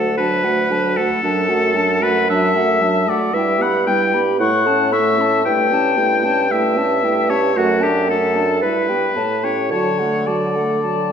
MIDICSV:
0, 0, Header, 1, 6, 480
1, 0, Start_track
1, 0, Key_signature, 2, "major"
1, 0, Tempo, 527241
1, 1130, Time_signature, 4, 2, 24, 8
1, 7858, Tempo, 550459
1, 10030, End_track
2, 0, Start_track
2, 0, Title_t, "Flute"
2, 0, Program_c, 0, 73
2, 0, Note_on_c, 0, 78, 41
2, 164, Note_off_c, 0, 78, 0
2, 170, Note_on_c, 0, 81, 46
2, 405, Note_on_c, 0, 78, 41
2, 419, Note_off_c, 0, 81, 0
2, 653, Note_on_c, 0, 81, 38
2, 667, Note_off_c, 0, 78, 0
2, 887, Note_on_c, 0, 78, 43
2, 901, Note_off_c, 0, 81, 0
2, 1123, Note_off_c, 0, 78, 0
2, 1128, Note_on_c, 0, 81, 45
2, 1364, Note_on_c, 0, 78, 44
2, 1378, Note_off_c, 0, 81, 0
2, 1606, Note_on_c, 0, 81, 48
2, 1620, Note_off_c, 0, 78, 0
2, 1854, Note_on_c, 0, 78, 42
2, 1868, Note_off_c, 0, 81, 0
2, 2088, Note_off_c, 0, 78, 0
2, 2093, Note_on_c, 0, 81, 46
2, 2342, Note_on_c, 0, 78, 46
2, 2356, Note_off_c, 0, 81, 0
2, 2568, Note_on_c, 0, 81, 41
2, 2582, Note_off_c, 0, 78, 0
2, 2820, Note_on_c, 0, 78, 45
2, 2834, Note_off_c, 0, 81, 0
2, 3056, Note_off_c, 0, 78, 0
2, 3066, Note_on_c, 0, 79, 47
2, 3300, Note_on_c, 0, 83, 48
2, 3314, Note_off_c, 0, 79, 0
2, 3531, Note_on_c, 0, 79, 43
2, 3545, Note_off_c, 0, 83, 0
2, 3770, Note_on_c, 0, 83, 45
2, 3783, Note_off_c, 0, 79, 0
2, 4002, Note_off_c, 0, 83, 0
2, 4008, Note_on_c, 0, 85, 52
2, 4248, Note_on_c, 0, 81, 45
2, 4262, Note_off_c, 0, 85, 0
2, 4486, Note_on_c, 0, 85, 39
2, 4500, Note_off_c, 0, 81, 0
2, 4744, Note_on_c, 0, 81, 41
2, 4758, Note_off_c, 0, 85, 0
2, 4976, Note_off_c, 0, 81, 0
2, 4991, Note_on_c, 0, 79, 46
2, 5222, Note_on_c, 0, 81, 43
2, 5236, Note_off_c, 0, 79, 0
2, 5450, Note_on_c, 0, 79, 42
2, 5463, Note_off_c, 0, 81, 0
2, 5686, Note_on_c, 0, 81, 48
2, 5700, Note_off_c, 0, 79, 0
2, 5920, Note_off_c, 0, 81, 0
2, 5926, Note_on_c, 0, 79, 48
2, 6171, Note_on_c, 0, 81, 43
2, 6185, Note_off_c, 0, 79, 0
2, 6416, Note_on_c, 0, 79, 43
2, 6430, Note_off_c, 0, 81, 0
2, 6645, Note_on_c, 0, 81, 41
2, 6658, Note_off_c, 0, 79, 0
2, 6879, Note_off_c, 0, 81, 0
2, 6885, Note_on_c, 0, 78, 46
2, 7111, Note_on_c, 0, 81, 46
2, 7125, Note_off_c, 0, 78, 0
2, 7350, Note_on_c, 0, 78, 44
2, 7363, Note_off_c, 0, 81, 0
2, 7592, Note_on_c, 0, 81, 39
2, 7605, Note_off_c, 0, 78, 0
2, 7836, Note_off_c, 0, 81, 0
2, 7842, Note_on_c, 0, 76, 44
2, 8084, Note_on_c, 0, 79, 39
2, 8097, Note_off_c, 0, 76, 0
2, 8309, Note_off_c, 0, 79, 0
2, 8314, Note_on_c, 0, 81, 35
2, 8564, Note_on_c, 0, 79, 34
2, 8578, Note_off_c, 0, 81, 0
2, 8803, Note_off_c, 0, 79, 0
2, 8808, Note_on_c, 0, 81, 36
2, 9041, Note_on_c, 0, 78, 36
2, 9054, Note_off_c, 0, 81, 0
2, 9287, Note_on_c, 0, 81, 36
2, 9300, Note_off_c, 0, 78, 0
2, 9533, Note_on_c, 0, 78, 36
2, 9546, Note_off_c, 0, 81, 0
2, 9765, Note_off_c, 0, 78, 0
2, 9770, Note_on_c, 0, 81, 38
2, 10030, Note_off_c, 0, 81, 0
2, 10030, End_track
3, 0, Start_track
3, 0, Title_t, "Oboe"
3, 0, Program_c, 1, 68
3, 0, Note_on_c, 1, 69, 56
3, 153, Note_off_c, 1, 69, 0
3, 158, Note_on_c, 1, 71, 70
3, 879, Note_on_c, 1, 69, 77
3, 893, Note_off_c, 1, 71, 0
3, 1842, Note_on_c, 1, 71, 76
3, 1856, Note_off_c, 1, 69, 0
3, 2087, Note_off_c, 1, 71, 0
3, 2093, Note_on_c, 1, 76, 87
3, 2811, Note_on_c, 1, 74, 69
3, 2825, Note_off_c, 1, 76, 0
3, 3041, Note_on_c, 1, 76, 76
3, 3055, Note_off_c, 1, 74, 0
3, 3293, Note_on_c, 1, 78, 68
3, 3307, Note_off_c, 1, 76, 0
3, 3514, Note_off_c, 1, 78, 0
3, 3519, Note_on_c, 1, 79, 82
3, 3831, Note_off_c, 1, 79, 0
3, 4005, Note_on_c, 1, 78, 83
3, 4450, Note_off_c, 1, 78, 0
3, 4486, Note_on_c, 1, 76, 86
3, 4957, Note_off_c, 1, 76, 0
3, 4964, Note_on_c, 1, 79, 80
3, 5929, Note_on_c, 1, 76, 76
3, 5943, Note_off_c, 1, 79, 0
3, 6643, Note_on_c, 1, 73, 72
3, 6657, Note_off_c, 1, 76, 0
3, 6893, Note_on_c, 1, 66, 64
3, 6907, Note_off_c, 1, 73, 0
3, 7134, Note_on_c, 1, 67, 64
3, 7148, Note_off_c, 1, 66, 0
3, 7373, Note_off_c, 1, 67, 0
3, 7377, Note_on_c, 1, 69, 68
3, 7841, Note_off_c, 1, 69, 0
3, 7847, Note_on_c, 1, 71, 61
3, 8565, Note_on_c, 1, 73, 52
3, 8578, Note_off_c, 1, 71, 0
3, 8792, Note_off_c, 1, 73, 0
3, 8798, Note_on_c, 1, 73, 60
3, 9285, Note_on_c, 1, 74, 52
3, 9298, Note_off_c, 1, 73, 0
3, 10030, Note_off_c, 1, 74, 0
3, 10030, End_track
4, 0, Start_track
4, 0, Title_t, "Clarinet"
4, 0, Program_c, 2, 71
4, 0, Note_on_c, 2, 66, 39
4, 164, Note_off_c, 2, 66, 0
4, 169, Note_on_c, 2, 62, 44
4, 405, Note_on_c, 2, 66, 42
4, 419, Note_off_c, 2, 62, 0
4, 641, Note_on_c, 2, 62, 41
4, 655, Note_off_c, 2, 66, 0
4, 884, Note_on_c, 2, 66, 46
4, 898, Note_off_c, 2, 62, 0
4, 1112, Note_off_c, 2, 66, 0
4, 1117, Note_on_c, 2, 62, 54
4, 1355, Note_on_c, 2, 66, 44
4, 1369, Note_off_c, 2, 62, 0
4, 1592, Note_on_c, 2, 62, 54
4, 1606, Note_off_c, 2, 66, 0
4, 1838, Note_on_c, 2, 66, 47
4, 1852, Note_off_c, 2, 62, 0
4, 2079, Note_off_c, 2, 66, 0
4, 2084, Note_on_c, 2, 62, 54
4, 2320, Note_on_c, 2, 66, 46
4, 2334, Note_off_c, 2, 62, 0
4, 2572, Note_on_c, 2, 62, 45
4, 2585, Note_off_c, 2, 66, 0
4, 2805, Note_on_c, 2, 66, 51
4, 2819, Note_off_c, 2, 62, 0
4, 3036, Note_off_c, 2, 66, 0
4, 3041, Note_on_c, 2, 64, 55
4, 3278, Note_on_c, 2, 67, 47
4, 3291, Note_off_c, 2, 64, 0
4, 3524, Note_on_c, 2, 64, 49
4, 3538, Note_off_c, 2, 67, 0
4, 3766, Note_on_c, 2, 67, 51
4, 3780, Note_off_c, 2, 64, 0
4, 4000, Note_off_c, 2, 67, 0
4, 4005, Note_on_c, 2, 64, 55
4, 4244, Note_on_c, 2, 69, 46
4, 4258, Note_off_c, 2, 64, 0
4, 4481, Note_on_c, 2, 64, 47
4, 4495, Note_off_c, 2, 69, 0
4, 4725, Note_on_c, 2, 69, 49
4, 4739, Note_off_c, 2, 64, 0
4, 4958, Note_off_c, 2, 69, 0
4, 4964, Note_on_c, 2, 64, 58
4, 5207, Note_on_c, 2, 67, 48
4, 5220, Note_off_c, 2, 64, 0
4, 5448, Note_on_c, 2, 64, 53
4, 5462, Note_off_c, 2, 67, 0
4, 5685, Note_on_c, 2, 67, 45
4, 5698, Note_off_c, 2, 64, 0
4, 5925, Note_off_c, 2, 67, 0
4, 5930, Note_on_c, 2, 64, 48
4, 6169, Note_on_c, 2, 67, 46
4, 6182, Note_off_c, 2, 64, 0
4, 6407, Note_on_c, 2, 64, 43
4, 6421, Note_off_c, 2, 67, 0
4, 6651, Note_on_c, 2, 67, 49
4, 6665, Note_off_c, 2, 64, 0
4, 6885, Note_off_c, 2, 67, 0
4, 6890, Note_on_c, 2, 66, 58
4, 7132, Note_on_c, 2, 69, 47
4, 7146, Note_off_c, 2, 66, 0
4, 7374, Note_on_c, 2, 66, 47
4, 7388, Note_off_c, 2, 69, 0
4, 7615, Note_on_c, 2, 69, 43
4, 7629, Note_off_c, 2, 66, 0
4, 7852, Note_off_c, 2, 69, 0
4, 7857, Note_on_c, 2, 64, 47
4, 8093, Note_on_c, 2, 67, 40
4, 8106, Note_off_c, 2, 64, 0
4, 8315, Note_off_c, 2, 67, 0
4, 8320, Note_on_c, 2, 64, 41
4, 8567, Note_on_c, 2, 67, 38
4, 8581, Note_off_c, 2, 64, 0
4, 8807, Note_off_c, 2, 67, 0
4, 8815, Note_on_c, 2, 66, 41
4, 9054, Note_on_c, 2, 69, 36
4, 9067, Note_off_c, 2, 66, 0
4, 9296, Note_on_c, 2, 66, 41
4, 9309, Note_off_c, 2, 69, 0
4, 9542, Note_on_c, 2, 69, 34
4, 9555, Note_off_c, 2, 66, 0
4, 9778, Note_off_c, 2, 69, 0
4, 9783, Note_on_c, 2, 66, 40
4, 10030, Note_off_c, 2, 66, 0
4, 10030, End_track
5, 0, Start_track
5, 0, Title_t, "French horn"
5, 0, Program_c, 3, 60
5, 0, Note_on_c, 3, 57, 43
5, 172, Note_off_c, 3, 57, 0
5, 178, Note_on_c, 3, 54, 42
5, 413, Note_on_c, 3, 57, 44
5, 427, Note_off_c, 3, 54, 0
5, 654, Note_on_c, 3, 54, 39
5, 668, Note_off_c, 3, 57, 0
5, 894, Note_on_c, 3, 57, 45
5, 908, Note_off_c, 3, 54, 0
5, 1120, Note_off_c, 3, 57, 0
5, 1126, Note_on_c, 3, 54, 47
5, 1361, Note_on_c, 3, 57, 48
5, 1375, Note_off_c, 3, 54, 0
5, 1603, Note_on_c, 3, 54, 43
5, 1617, Note_off_c, 3, 57, 0
5, 1841, Note_on_c, 3, 57, 45
5, 1855, Note_off_c, 3, 54, 0
5, 2077, Note_off_c, 3, 57, 0
5, 2083, Note_on_c, 3, 54, 51
5, 2320, Note_on_c, 3, 57, 48
5, 2334, Note_off_c, 3, 54, 0
5, 2559, Note_on_c, 3, 54, 47
5, 2573, Note_off_c, 3, 57, 0
5, 2801, Note_on_c, 3, 57, 47
5, 2815, Note_off_c, 3, 54, 0
5, 3031, Note_off_c, 3, 57, 0
5, 3037, Note_on_c, 3, 55, 52
5, 3280, Note_on_c, 3, 59, 47
5, 3293, Note_off_c, 3, 55, 0
5, 3530, Note_on_c, 3, 55, 46
5, 3544, Note_off_c, 3, 59, 0
5, 3777, Note_on_c, 3, 59, 50
5, 3791, Note_off_c, 3, 55, 0
5, 4004, Note_off_c, 3, 59, 0
5, 4010, Note_on_c, 3, 57, 50
5, 4252, Note_on_c, 3, 61, 55
5, 4265, Note_off_c, 3, 57, 0
5, 4489, Note_on_c, 3, 57, 47
5, 4503, Note_off_c, 3, 61, 0
5, 4728, Note_on_c, 3, 61, 43
5, 4742, Note_off_c, 3, 57, 0
5, 4963, Note_off_c, 3, 61, 0
5, 4968, Note_on_c, 3, 57, 51
5, 5201, Note_on_c, 3, 61, 51
5, 5214, Note_off_c, 3, 57, 0
5, 5439, Note_on_c, 3, 57, 50
5, 5452, Note_off_c, 3, 61, 0
5, 5683, Note_on_c, 3, 61, 50
5, 5697, Note_off_c, 3, 57, 0
5, 5922, Note_off_c, 3, 61, 0
5, 5928, Note_on_c, 3, 57, 51
5, 6161, Note_on_c, 3, 61, 46
5, 6175, Note_off_c, 3, 57, 0
5, 6404, Note_on_c, 3, 57, 41
5, 6417, Note_off_c, 3, 61, 0
5, 6648, Note_on_c, 3, 61, 41
5, 6661, Note_off_c, 3, 57, 0
5, 6877, Note_off_c, 3, 61, 0
5, 6882, Note_on_c, 3, 57, 56
5, 7119, Note_on_c, 3, 62, 47
5, 7133, Note_off_c, 3, 57, 0
5, 7365, Note_on_c, 3, 57, 41
5, 7379, Note_off_c, 3, 62, 0
5, 7608, Note_on_c, 3, 62, 45
5, 7621, Note_off_c, 3, 57, 0
5, 7845, Note_off_c, 3, 62, 0
5, 7850, Note_on_c, 3, 55, 43
5, 8096, Note_on_c, 3, 59, 44
5, 8109, Note_off_c, 3, 55, 0
5, 8318, Note_off_c, 3, 59, 0
5, 8323, Note_on_c, 3, 57, 35
5, 8564, Note_on_c, 3, 61, 39
5, 8577, Note_off_c, 3, 57, 0
5, 8801, Note_off_c, 3, 61, 0
5, 8806, Note_on_c, 3, 54, 42
5, 9059, Note_on_c, 3, 57, 41
5, 9072, Note_off_c, 3, 54, 0
5, 9301, Note_on_c, 3, 54, 39
5, 9314, Note_off_c, 3, 57, 0
5, 9539, Note_on_c, 3, 57, 41
5, 9552, Note_off_c, 3, 54, 0
5, 9777, Note_off_c, 3, 57, 0
5, 9783, Note_on_c, 3, 54, 38
5, 10030, Note_off_c, 3, 54, 0
5, 10030, End_track
6, 0, Start_track
6, 0, Title_t, "Bassoon"
6, 0, Program_c, 4, 70
6, 0, Note_on_c, 4, 38, 44
6, 975, Note_off_c, 4, 38, 0
6, 1130, Note_on_c, 4, 42, 46
6, 2767, Note_off_c, 4, 42, 0
6, 3037, Note_on_c, 4, 43, 57
6, 4007, Note_on_c, 4, 45, 59
6, 4020, Note_off_c, 4, 43, 0
6, 4965, Note_off_c, 4, 45, 0
6, 4970, Note_on_c, 4, 43, 54
6, 6899, Note_on_c, 4, 42, 52
6, 6912, Note_off_c, 4, 43, 0
6, 7854, Note_on_c, 4, 43, 51
6, 7868, Note_off_c, 4, 42, 0
6, 8317, Note_off_c, 4, 43, 0
6, 8322, Note_on_c, 4, 45, 44
6, 8798, Note_on_c, 4, 50, 48
6, 8811, Note_off_c, 4, 45, 0
6, 10030, Note_off_c, 4, 50, 0
6, 10030, End_track
0, 0, End_of_file